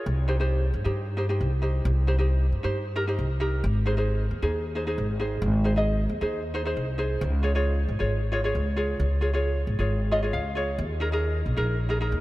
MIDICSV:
0, 0, Header, 1, 3, 480
1, 0, Start_track
1, 0, Tempo, 446761
1, 66, Time_signature, 4, 2, 24, 8
1, 13114, End_track
2, 0, Start_track
2, 0, Title_t, "Ukulele"
2, 0, Program_c, 0, 24
2, 298, Note_on_c, 0, 63, 84
2, 303, Note_on_c, 0, 67, 74
2, 305, Note_on_c, 0, 72, 92
2, 380, Note_off_c, 0, 63, 0
2, 381, Note_off_c, 0, 67, 0
2, 383, Note_off_c, 0, 72, 0
2, 426, Note_on_c, 0, 63, 75
2, 434, Note_on_c, 0, 67, 73
2, 435, Note_on_c, 0, 72, 90
2, 716, Note_off_c, 0, 63, 0
2, 717, Note_off_c, 0, 67, 0
2, 720, Note_off_c, 0, 72, 0
2, 907, Note_on_c, 0, 63, 79
2, 913, Note_on_c, 0, 67, 77
2, 920, Note_on_c, 0, 72, 76
2, 1125, Note_off_c, 0, 63, 0
2, 1129, Note_off_c, 0, 67, 0
2, 1130, Note_off_c, 0, 72, 0
2, 1256, Note_on_c, 0, 63, 87
2, 1260, Note_on_c, 0, 67, 80
2, 1269, Note_on_c, 0, 72, 84
2, 1338, Note_off_c, 0, 63, 0
2, 1341, Note_off_c, 0, 67, 0
2, 1343, Note_off_c, 0, 72, 0
2, 1387, Note_on_c, 0, 63, 81
2, 1391, Note_on_c, 0, 67, 73
2, 1397, Note_on_c, 0, 72, 76
2, 1605, Note_off_c, 0, 63, 0
2, 1608, Note_off_c, 0, 67, 0
2, 1609, Note_off_c, 0, 72, 0
2, 1738, Note_on_c, 0, 63, 88
2, 1746, Note_on_c, 0, 67, 71
2, 1747, Note_on_c, 0, 72, 85
2, 2034, Note_off_c, 0, 63, 0
2, 2036, Note_off_c, 0, 67, 0
2, 2038, Note_off_c, 0, 72, 0
2, 2226, Note_on_c, 0, 63, 86
2, 2234, Note_on_c, 0, 67, 68
2, 2235, Note_on_c, 0, 72, 92
2, 2304, Note_off_c, 0, 63, 0
2, 2306, Note_off_c, 0, 67, 0
2, 2308, Note_off_c, 0, 72, 0
2, 2347, Note_on_c, 0, 63, 85
2, 2355, Note_on_c, 0, 67, 78
2, 2363, Note_on_c, 0, 72, 74
2, 2636, Note_off_c, 0, 63, 0
2, 2640, Note_off_c, 0, 67, 0
2, 2642, Note_off_c, 0, 72, 0
2, 2827, Note_on_c, 0, 63, 78
2, 2836, Note_on_c, 0, 67, 72
2, 2839, Note_on_c, 0, 72, 92
2, 3047, Note_off_c, 0, 63, 0
2, 3048, Note_off_c, 0, 67, 0
2, 3052, Note_off_c, 0, 72, 0
2, 3176, Note_on_c, 0, 63, 81
2, 3181, Note_on_c, 0, 70, 103
2, 3188, Note_on_c, 0, 67, 67
2, 3259, Note_off_c, 0, 63, 0
2, 3262, Note_off_c, 0, 70, 0
2, 3263, Note_off_c, 0, 67, 0
2, 3303, Note_on_c, 0, 63, 82
2, 3309, Note_on_c, 0, 67, 68
2, 3316, Note_on_c, 0, 72, 96
2, 3524, Note_off_c, 0, 63, 0
2, 3528, Note_off_c, 0, 67, 0
2, 3529, Note_off_c, 0, 72, 0
2, 3653, Note_on_c, 0, 63, 91
2, 3659, Note_on_c, 0, 67, 82
2, 3666, Note_on_c, 0, 70, 100
2, 3900, Note_off_c, 0, 63, 0
2, 3904, Note_off_c, 0, 67, 0
2, 3907, Note_off_c, 0, 70, 0
2, 4143, Note_on_c, 0, 63, 83
2, 4150, Note_on_c, 0, 68, 78
2, 4155, Note_on_c, 0, 72, 94
2, 4223, Note_off_c, 0, 63, 0
2, 4227, Note_off_c, 0, 68, 0
2, 4229, Note_off_c, 0, 72, 0
2, 4265, Note_on_c, 0, 63, 83
2, 4274, Note_on_c, 0, 68, 67
2, 4276, Note_on_c, 0, 72, 90
2, 4556, Note_off_c, 0, 63, 0
2, 4558, Note_off_c, 0, 68, 0
2, 4561, Note_off_c, 0, 72, 0
2, 4753, Note_on_c, 0, 63, 81
2, 4757, Note_on_c, 0, 68, 80
2, 4765, Note_on_c, 0, 72, 70
2, 4970, Note_off_c, 0, 63, 0
2, 4972, Note_off_c, 0, 68, 0
2, 4974, Note_off_c, 0, 72, 0
2, 5106, Note_on_c, 0, 63, 83
2, 5110, Note_on_c, 0, 68, 75
2, 5120, Note_on_c, 0, 72, 78
2, 5185, Note_off_c, 0, 63, 0
2, 5188, Note_off_c, 0, 68, 0
2, 5190, Note_off_c, 0, 72, 0
2, 5230, Note_on_c, 0, 63, 81
2, 5235, Note_on_c, 0, 68, 78
2, 5240, Note_on_c, 0, 72, 75
2, 5449, Note_off_c, 0, 63, 0
2, 5452, Note_off_c, 0, 68, 0
2, 5452, Note_off_c, 0, 72, 0
2, 5582, Note_on_c, 0, 63, 81
2, 5586, Note_on_c, 0, 68, 76
2, 5595, Note_on_c, 0, 72, 82
2, 5878, Note_off_c, 0, 63, 0
2, 5881, Note_off_c, 0, 68, 0
2, 5883, Note_off_c, 0, 72, 0
2, 6063, Note_on_c, 0, 63, 77
2, 6068, Note_on_c, 0, 68, 72
2, 6072, Note_on_c, 0, 72, 88
2, 6144, Note_off_c, 0, 63, 0
2, 6144, Note_off_c, 0, 68, 0
2, 6149, Note_off_c, 0, 72, 0
2, 6189, Note_on_c, 0, 63, 80
2, 6197, Note_on_c, 0, 68, 75
2, 6204, Note_on_c, 0, 75, 93
2, 6479, Note_off_c, 0, 63, 0
2, 6483, Note_off_c, 0, 68, 0
2, 6486, Note_off_c, 0, 75, 0
2, 6673, Note_on_c, 0, 63, 77
2, 6679, Note_on_c, 0, 68, 81
2, 6685, Note_on_c, 0, 72, 75
2, 6891, Note_off_c, 0, 63, 0
2, 6895, Note_off_c, 0, 68, 0
2, 6895, Note_off_c, 0, 72, 0
2, 7025, Note_on_c, 0, 63, 83
2, 7032, Note_on_c, 0, 68, 70
2, 7034, Note_on_c, 0, 72, 98
2, 7107, Note_off_c, 0, 63, 0
2, 7108, Note_off_c, 0, 68, 0
2, 7110, Note_off_c, 0, 72, 0
2, 7149, Note_on_c, 0, 63, 85
2, 7158, Note_on_c, 0, 68, 63
2, 7162, Note_on_c, 0, 72, 88
2, 7370, Note_off_c, 0, 63, 0
2, 7372, Note_off_c, 0, 68, 0
2, 7375, Note_off_c, 0, 72, 0
2, 7498, Note_on_c, 0, 63, 82
2, 7506, Note_on_c, 0, 68, 69
2, 7507, Note_on_c, 0, 72, 88
2, 7745, Note_off_c, 0, 63, 0
2, 7747, Note_off_c, 0, 68, 0
2, 7749, Note_off_c, 0, 72, 0
2, 7979, Note_on_c, 0, 65, 85
2, 7988, Note_on_c, 0, 68, 70
2, 7992, Note_on_c, 0, 73, 92
2, 8063, Note_off_c, 0, 65, 0
2, 8065, Note_off_c, 0, 68, 0
2, 8069, Note_off_c, 0, 73, 0
2, 8111, Note_on_c, 0, 65, 90
2, 8116, Note_on_c, 0, 68, 69
2, 8118, Note_on_c, 0, 73, 93
2, 8400, Note_off_c, 0, 68, 0
2, 8401, Note_off_c, 0, 65, 0
2, 8403, Note_off_c, 0, 73, 0
2, 8584, Note_on_c, 0, 65, 70
2, 8591, Note_on_c, 0, 68, 64
2, 8594, Note_on_c, 0, 73, 92
2, 8806, Note_off_c, 0, 65, 0
2, 8808, Note_off_c, 0, 68, 0
2, 8811, Note_off_c, 0, 73, 0
2, 8937, Note_on_c, 0, 65, 91
2, 8944, Note_on_c, 0, 68, 74
2, 8948, Note_on_c, 0, 73, 93
2, 9021, Note_off_c, 0, 65, 0
2, 9025, Note_off_c, 0, 68, 0
2, 9025, Note_off_c, 0, 73, 0
2, 9069, Note_on_c, 0, 65, 85
2, 9073, Note_on_c, 0, 68, 80
2, 9081, Note_on_c, 0, 73, 78
2, 9288, Note_off_c, 0, 65, 0
2, 9291, Note_off_c, 0, 68, 0
2, 9292, Note_off_c, 0, 73, 0
2, 9415, Note_on_c, 0, 65, 82
2, 9420, Note_on_c, 0, 68, 82
2, 9427, Note_on_c, 0, 73, 90
2, 9714, Note_off_c, 0, 65, 0
2, 9717, Note_off_c, 0, 68, 0
2, 9718, Note_off_c, 0, 73, 0
2, 9895, Note_on_c, 0, 65, 81
2, 9905, Note_on_c, 0, 68, 70
2, 9908, Note_on_c, 0, 73, 90
2, 9981, Note_off_c, 0, 65, 0
2, 9982, Note_off_c, 0, 68, 0
2, 9986, Note_off_c, 0, 73, 0
2, 10029, Note_on_c, 0, 65, 89
2, 10037, Note_on_c, 0, 68, 73
2, 10041, Note_on_c, 0, 73, 92
2, 10317, Note_off_c, 0, 65, 0
2, 10321, Note_off_c, 0, 68, 0
2, 10323, Note_off_c, 0, 73, 0
2, 10515, Note_on_c, 0, 65, 75
2, 10520, Note_on_c, 0, 68, 73
2, 10529, Note_on_c, 0, 73, 78
2, 10730, Note_off_c, 0, 65, 0
2, 10733, Note_off_c, 0, 68, 0
2, 10735, Note_off_c, 0, 73, 0
2, 10866, Note_on_c, 0, 68, 76
2, 10869, Note_on_c, 0, 65, 85
2, 10874, Note_on_c, 0, 73, 64
2, 10875, Note_on_c, 0, 75, 94
2, 10944, Note_off_c, 0, 65, 0
2, 10945, Note_off_c, 0, 68, 0
2, 10949, Note_off_c, 0, 75, 0
2, 10985, Note_off_c, 0, 73, 0
2, 10985, Note_on_c, 0, 65, 85
2, 10994, Note_on_c, 0, 68, 74
2, 11004, Note_on_c, 0, 73, 78
2, 11100, Note_on_c, 0, 77, 83
2, 11204, Note_off_c, 0, 65, 0
2, 11209, Note_off_c, 0, 68, 0
2, 11211, Note_off_c, 0, 73, 0
2, 11337, Note_on_c, 0, 65, 89
2, 11346, Note_on_c, 0, 68, 73
2, 11352, Note_on_c, 0, 73, 99
2, 11549, Note_off_c, 0, 77, 0
2, 11582, Note_off_c, 0, 65, 0
2, 11584, Note_off_c, 0, 68, 0
2, 11589, Note_off_c, 0, 73, 0
2, 11819, Note_on_c, 0, 63, 91
2, 11826, Note_on_c, 0, 68, 81
2, 11831, Note_on_c, 0, 70, 94
2, 11899, Note_off_c, 0, 63, 0
2, 11903, Note_off_c, 0, 68, 0
2, 11905, Note_off_c, 0, 70, 0
2, 11949, Note_on_c, 0, 63, 84
2, 11955, Note_on_c, 0, 68, 77
2, 11962, Note_on_c, 0, 70, 99
2, 12235, Note_off_c, 0, 63, 0
2, 12238, Note_off_c, 0, 68, 0
2, 12242, Note_off_c, 0, 70, 0
2, 12426, Note_on_c, 0, 63, 81
2, 12433, Note_on_c, 0, 68, 69
2, 12434, Note_on_c, 0, 70, 91
2, 12644, Note_off_c, 0, 63, 0
2, 12645, Note_off_c, 0, 68, 0
2, 12648, Note_off_c, 0, 70, 0
2, 12773, Note_on_c, 0, 63, 85
2, 12783, Note_on_c, 0, 68, 77
2, 12783, Note_on_c, 0, 70, 99
2, 12857, Note_off_c, 0, 63, 0
2, 12858, Note_off_c, 0, 68, 0
2, 12860, Note_off_c, 0, 70, 0
2, 12900, Note_on_c, 0, 63, 88
2, 12905, Note_on_c, 0, 68, 66
2, 12910, Note_on_c, 0, 70, 95
2, 13114, Note_off_c, 0, 63, 0
2, 13114, Note_off_c, 0, 68, 0
2, 13114, Note_off_c, 0, 70, 0
2, 13114, End_track
3, 0, Start_track
3, 0, Title_t, "Upright bass"
3, 0, Program_c, 1, 32
3, 67, Note_on_c, 1, 36, 109
3, 743, Note_off_c, 1, 36, 0
3, 790, Note_on_c, 1, 43, 88
3, 909, Note_off_c, 1, 43, 0
3, 917, Note_on_c, 1, 43, 89
3, 1469, Note_off_c, 1, 43, 0
3, 1511, Note_on_c, 1, 36, 94
3, 1958, Note_off_c, 1, 36, 0
3, 1989, Note_on_c, 1, 36, 117
3, 2665, Note_off_c, 1, 36, 0
3, 2709, Note_on_c, 1, 43, 82
3, 2829, Note_off_c, 1, 43, 0
3, 2840, Note_on_c, 1, 43, 85
3, 3391, Note_off_c, 1, 43, 0
3, 3423, Note_on_c, 1, 36, 91
3, 3874, Note_off_c, 1, 36, 0
3, 3908, Note_on_c, 1, 32, 109
3, 4586, Note_off_c, 1, 32, 0
3, 4629, Note_on_c, 1, 39, 89
3, 4747, Note_off_c, 1, 39, 0
3, 4754, Note_on_c, 1, 39, 85
3, 5309, Note_off_c, 1, 39, 0
3, 5349, Note_on_c, 1, 32, 94
3, 5799, Note_off_c, 1, 32, 0
3, 5821, Note_on_c, 1, 32, 114
3, 6503, Note_off_c, 1, 32, 0
3, 6547, Note_on_c, 1, 39, 90
3, 6667, Note_off_c, 1, 39, 0
3, 6673, Note_on_c, 1, 39, 90
3, 7229, Note_off_c, 1, 39, 0
3, 7270, Note_on_c, 1, 36, 92
3, 7720, Note_off_c, 1, 36, 0
3, 7749, Note_on_c, 1, 37, 112
3, 8427, Note_off_c, 1, 37, 0
3, 8471, Note_on_c, 1, 32, 86
3, 8592, Note_off_c, 1, 32, 0
3, 8599, Note_on_c, 1, 32, 84
3, 9151, Note_off_c, 1, 32, 0
3, 9185, Note_on_c, 1, 37, 87
3, 9636, Note_off_c, 1, 37, 0
3, 9665, Note_on_c, 1, 37, 105
3, 10343, Note_off_c, 1, 37, 0
3, 10390, Note_on_c, 1, 32, 91
3, 10510, Note_off_c, 1, 32, 0
3, 10517, Note_on_c, 1, 32, 87
3, 11068, Note_off_c, 1, 32, 0
3, 11106, Note_on_c, 1, 37, 93
3, 11554, Note_off_c, 1, 37, 0
3, 11587, Note_on_c, 1, 39, 111
3, 12262, Note_off_c, 1, 39, 0
3, 12310, Note_on_c, 1, 34, 85
3, 12428, Note_off_c, 1, 34, 0
3, 12436, Note_on_c, 1, 34, 89
3, 12986, Note_off_c, 1, 34, 0
3, 13020, Note_on_c, 1, 39, 93
3, 13114, Note_off_c, 1, 39, 0
3, 13114, End_track
0, 0, End_of_file